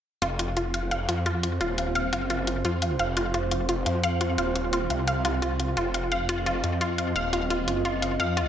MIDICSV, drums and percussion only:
0, 0, Header, 1, 2, 480
1, 0, Start_track
1, 0, Tempo, 346821
1, 304, Time_signature, 4, 2, 24, 8
1, 11742, End_track
2, 0, Start_track
2, 0, Title_t, "Drums"
2, 304, Note_on_c, 9, 42, 76
2, 442, Note_off_c, 9, 42, 0
2, 544, Note_on_c, 9, 42, 94
2, 682, Note_off_c, 9, 42, 0
2, 784, Note_on_c, 9, 42, 78
2, 922, Note_off_c, 9, 42, 0
2, 1024, Note_on_c, 9, 42, 88
2, 1163, Note_off_c, 9, 42, 0
2, 1264, Note_on_c, 9, 42, 79
2, 1403, Note_off_c, 9, 42, 0
2, 1504, Note_on_c, 9, 42, 92
2, 1642, Note_off_c, 9, 42, 0
2, 1744, Note_on_c, 9, 42, 75
2, 1882, Note_off_c, 9, 42, 0
2, 1984, Note_on_c, 9, 42, 92
2, 2123, Note_off_c, 9, 42, 0
2, 2224, Note_on_c, 9, 42, 77
2, 2362, Note_off_c, 9, 42, 0
2, 2464, Note_on_c, 9, 42, 88
2, 2602, Note_off_c, 9, 42, 0
2, 2704, Note_on_c, 9, 42, 78
2, 2842, Note_off_c, 9, 42, 0
2, 2944, Note_on_c, 9, 42, 88
2, 3082, Note_off_c, 9, 42, 0
2, 3183, Note_on_c, 9, 42, 78
2, 3322, Note_off_c, 9, 42, 0
2, 3423, Note_on_c, 9, 42, 92
2, 3561, Note_off_c, 9, 42, 0
2, 3663, Note_on_c, 9, 42, 76
2, 3801, Note_off_c, 9, 42, 0
2, 3903, Note_on_c, 9, 42, 91
2, 4041, Note_off_c, 9, 42, 0
2, 4143, Note_on_c, 9, 42, 71
2, 4282, Note_off_c, 9, 42, 0
2, 4384, Note_on_c, 9, 42, 87
2, 4522, Note_off_c, 9, 42, 0
2, 4624, Note_on_c, 9, 42, 76
2, 4762, Note_off_c, 9, 42, 0
2, 4864, Note_on_c, 9, 42, 86
2, 5002, Note_off_c, 9, 42, 0
2, 5104, Note_on_c, 9, 42, 74
2, 5243, Note_off_c, 9, 42, 0
2, 5344, Note_on_c, 9, 42, 88
2, 5483, Note_off_c, 9, 42, 0
2, 5584, Note_on_c, 9, 42, 71
2, 5723, Note_off_c, 9, 42, 0
2, 5824, Note_on_c, 9, 42, 89
2, 5963, Note_off_c, 9, 42, 0
2, 6065, Note_on_c, 9, 42, 73
2, 6203, Note_off_c, 9, 42, 0
2, 6305, Note_on_c, 9, 42, 85
2, 6443, Note_off_c, 9, 42, 0
2, 6544, Note_on_c, 9, 42, 75
2, 6683, Note_off_c, 9, 42, 0
2, 6784, Note_on_c, 9, 42, 83
2, 6922, Note_off_c, 9, 42, 0
2, 7024, Note_on_c, 9, 42, 73
2, 7162, Note_off_c, 9, 42, 0
2, 7264, Note_on_c, 9, 42, 85
2, 7402, Note_off_c, 9, 42, 0
2, 7505, Note_on_c, 9, 42, 69
2, 7643, Note_off_c, 9, 42, 0
2, 7745, Note_on_c, 9, 42, 85
2, 7883, Note_off_c, 9, 42, 0
2, 7985, Note_on_c, 9, 42, 72
2, 8124, Note_off_c, 9, 42, 0
2, 8226, Note_on_c, 9, 42, 85
2, 8364, Note_off_c, 9, 42, 0
2, 8465, Note_on_c, 9, 42, 74
2, 8603, Note_off_c, 9, 42, 0
2, 8705, Note_on_c, 9, 42, 83
2, 8843, Note_off_c, 9, 42, 0
2, 8945, Note_on_c, 9, 42, 74
2, 9084, Note_off_c, 9, 42, 0
2, 9185, Note_on_c, 9, 42, 86
2, 9324, Note_off_c, 9, 42, 0
2, 9426, Note_on_c, 9, 42, 69
2, 9564, Note_off_c, 9, 42, 0
2, 9665, Note_on_c, 9, 42, 86
2, 9804, Note_off_c, 9, 42, 0
2, 9905, Note_on_c, 9, 42, 73
2, 10044, Note_off_c, 9, 42, 0
2, 10145, Note_on_c, 9, 42, 89
2, 10283, Note_off_c, 9, 42, 0
2, 10386, Note_on_c, 9, 42, 78
2, 10524, Note_off_c, 9, 42, 0
2, 10625, Note_on_c, 9, 42, 87
2, 10764, Note_off_c, 9, 42, 0
2, 10865, Note_on_c, 9, 42, 78
2, 11004, Note_off_c, 9, 42, 0
2, 11105, Note_on_c, 9, 42, 90
2, 11243, Note_off_c, 9, 42, 0
2, 11345, Note_on_c, 9, 42, 73
2, 11483, Note_off_c, 9, 42, 0
2, 11585, Note_on_c, 9, 42, 87
2, 11723, Note_off_c, 9, 42, 0
2, 11742, End_track
0, 0, End_of_file